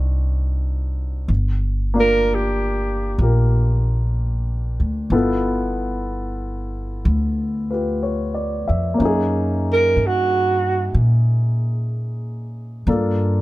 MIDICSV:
0, 0, Header, 1, 4, 480
1, 0, Start_track
1, 0, Tempo, 956938
1, 650, Time_signature, 4, 2, 24, 8
1, 2572, Tempo, 967742
1, 6683, End_track
2, 0, Start_track
2, 0, Title_t, "Alto saxophone"
2, 0, Program_c, 0, 65
2, 1003, Note_on_c, 0, 70, 87
2, 1175, Note_on_c, 0, 67, 59
2, 1183, Note_off_c, 0, 70, 0
2, 1632, Note_off_c, 0, 67, 0
2, 4854, Note_on_c, 0, 70, 77
2, 5020, Note_on_c, 0, 66, 68
2, 5027, Note_off_c, 0, 70, 0
2, 5480, Note_off_c, 0, 66, 0
2, 6683, End_track
3, 0, Start_track
3, 0, Title_t, "Grand piano"
3, 0, Program_c, 1, 0
3, 0, Control_c, 1, 64, 127
3, 0, Note_on_c, 1, 60, 53
3, 0, Note_on_c, 1, 62, 36
3, 0, Note_on_c, 1, 63, 47
3, 0, Note_on_c, 1, 65, 37
3, 0, Note_on_c, 1, 66, 54
3, 647, Note_off_c, 1, 62, 0
3, 649, Note_off_c, 1, 60, 0
3, 650, Note_off_c, 1, 63, 0
3, 652, Note_off_c, 1, 66, 0
3, 655, Note_off_c, 1, 65, 0
3, 656, Control_c, 1, 64, 0
3, 733, Control_c, 1, 64, 127
3, 972, Note_on_c, 1, 58, 54
3, 981, Note_on_c, 1, 62, 49
3, 990, Note_on_c, 1, 65, 50
3, 1601, Note_off_c, 1, 65, 0
3, 1608, Note_on_c, 1, 65, 42
3, 1615, Note_on_c, 1, 67, 33
3, 1623, Note_on_c, 1, 70, 45
3, 2566, Note_off_c, 1, 65, 0
3, 2568, Note_on_c, 1, 59, 55
3, 2569, Note_on_c, 1, 64, 47
3, 2570, Note_off_c, 1, 58, 0
3, 2574, Note_off_c, 1, 62, 0
3, 2574, Note_on_c, 1, 65, 48
3, 2576, Note_off_c, 1, 67, 0
3, 2578, Note_on_c, 1, 69, 58
3, 2580, Note_off_c, 1, 70, 0
3, 2581, Control_c, 1, 64, 0
3, 2657, Control_c, 1, 64, 127
3, 3847, Note_off_c, 1, 65, 0
3, 3850, Note_on_c, 1, 71, 37
3, 3854, Note_on_c, 1, 65, 36
3, 3861, Note_off_c, 1, 71, 0
3, 3866, Note_on_c, 1, 67, 31
3, 3868, Note_on_c, 1, 71, 41
3, 4010, Note_on_c, 1, 73, 38
3, 4167, Note_on_c, 1, 74, 41
3, 4325, Note_off_c, 1, 73, 0
3, 4332, Note_on_c, 1, 76, 46
3, 4424, Note_off_c, 1, 74, 0
3, 4463, Note_on_c, 1, 58, 49
3, 4483, Note_on_c, 1, 61, 44
3, 4493, Note_off_c, 1, 65, 0
3, 4494, Note_off_c, 1, 59, 0
3, 4494, Note_off_c, 1, 64, 0
3, 4499, Note_off_c, 1, 67, 0
3, 4499, Note_off_c, 1, 69, 0
3, 4500, Note_off_c, 1, 71, 0
3, 4500, Note_on_c, 1, 63, 49
3, 4504, Control_c, 1, 64, 0
3, 4519, Note_on_c, 1, 68, 57
3, 4586, Control_c, 1, 64, 127
3, 4587, Note_off_c, 1, 76, 0
3, 6398, Note_off_c, 1, 58, 0
3, 6408, Note_off_c, 1, 61, 0
3, 6415, Note_on_c, 1, 58, 44
3, 6416, Note_off_c, 1, 63, 0
3, 6417, Note_on_c, 1, 62, 40
3, 6420, Note_on_c, 1, 65, 45
3, 6422, Control_c, 1, 64, 0
3, 6423, Note_on_c, 1, 69, 51
3, 6426, Note_off_c, 1, 68, 0
3, 6520, Control_c, 1, 64, 127
3, 6683, Note_off_c, 1, 58, 0
3, 6683, Note_off_c, 1, 62, 0
3, 6683, Note_off_c, 1, 65, 0
3, 6683, Note_off_c, 1, 69, 0
3, 6683, End_track
4, 0, Start_track
4, 0, Title_t, "Upright bass"
4, 0, Program_c, 2, 32
4, 0, Note_on_c, 2, 36, 74
4, 625, Note_off_c, 2, 36, 0
4, 644, Note_on_c, 2, 31, 73
4, 1587, Note_off_c, 2, 31, 0
4, 1597, Note_on_c, 2, 34, 77
4, 2397, Note_off_c, 2, 34, 0
4, 2406, Note_on_c, 2, 38, 55
4, 2554, Note_off_c, 2, 38, 0
4, 2559, Note_on_c, 2, 31, 72
4, 3504, Note_off_c, 2, 31, 0
4, 3526, Note_on_c, 2, 38, 73
4, 4324, Note_off_c, 2, 38, 0
4, 4339, Note_on_c, 2, 41, 53
4, 4483, Note_off_c, 2, 41, 0
4, 4492, Note_on_c, 2, 42, 71
4, 4957, Note_off_c, 2, 42, 0
4, 4971, Note_on_c, 2, 43, 63
4, 5435, Note_off_c, 2, 43, 0
4, 5457, Note_on_c, 2, 46, 73
4, 6394, Note_off_c, 2, 46, 0
4, 6411, Note_on_c, 2, 43, 78
4, 6683, Note_off_c, 2, 43, 0
4, 6683, End_track
0, 0, End_of_file